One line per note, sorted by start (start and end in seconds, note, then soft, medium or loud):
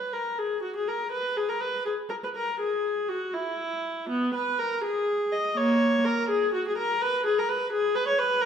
0.00 0.14 B4 medium
0.13 0.38 A#4 medium
0.39 0.63 G#4 medium
0.62 0.75 F#4 medium
0.76 0.88 G#4 medium
0.88 1.12 A#4 medium
1.12 1.36 B4 medium
1.37 1.49 G#4 medium
1.49 1.61 A#4 medium
1.61 1.86 B4 medium
1.86 1.94 G#4 medium
2.09 2.15 A#4 soft
2.24 2.29 B4 medium
2.36 2.60 A#4 medium
2.60 3.08 G#4 medium
3.09 3.33 F#4 medium
3.33 4.10 E4 medium
4.09 4.35 B3 medium
4.35 4.59 B4 medium
4.59 4.83 A#4 medium
4.84 5.31 G#4 medium
5.32 5.56 D#5 medium
5.56 6.02 A#3 medium
5.56 6.05 C#5 medium
6.05 6.29 A#4 medium
6.29 6.53 G#4 medium
6.54 6.65 F#4 medium
6.68 6.78 G#4 medium
6.78 7.01 A#4 medium
7.01 7.25 B4 medium
7.26 7.37 G#4 medium
7.38 7.49 A#4 medium
7.49 7.72 B4 medium
7.73 7.95 G#4 medium
7.95 8.07 B4 medium
8.08 8.19 C#5 medium
8.18 8.42 B4 medium
8.42 8.45 A#4 medium